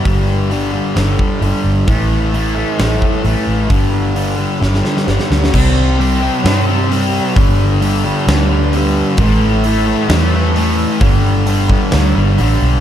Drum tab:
CC |----------------|----------------|----------------|x---------------|
HH |o---o---o---o---|o---o---o---o---|o---o-----------|----o---o---o---|
SD |--------o-------|--------o-------|--------oooooooo|--------o-------|
BD |o---------o-----|o---------o-----|o---------------|o---------------|

CC |----------------|----------------|----------------|
HH |o---o---o---o---|o---o---o---o---|o---o---o---o---|
SD |--------o-------|--------o-------|--------o-------|
BD |o---------------|o---------------|o-----o---------|